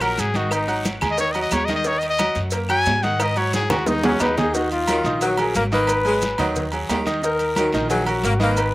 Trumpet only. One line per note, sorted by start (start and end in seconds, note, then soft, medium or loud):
0.01 0.21 A#4 medium
0.19 0.38 G#4 medium
0.36 0.54 F#4 medium
0.53 0.85 D#4 medium
1.10 1.20 D#5 loud
1.20 1.33 C#5 loud
1.32 1.41 D#5 medium
1.41 1.55 D#5 medium
1.53 1.66 C#5 medium
1.65 1.75 D#5 medium
1.76 1.88 D#5 medium
1.87 2.00 C#5 loud
1.99 2.09 D#5 medium
2.09 2.41 D#5 loud
2.70 3.04 G#5 loud
3.03 3.24 F#5 medium
3.22 3.39 D#5 medium
3.38 3.54 C#5 medium
3.55 3.70 G#4 medium
3.71 3.89 F#4 medium
3.87 4.06 D#4 medium
4.05 4.23 C#4 loud
4.22 4.54 D#4 medium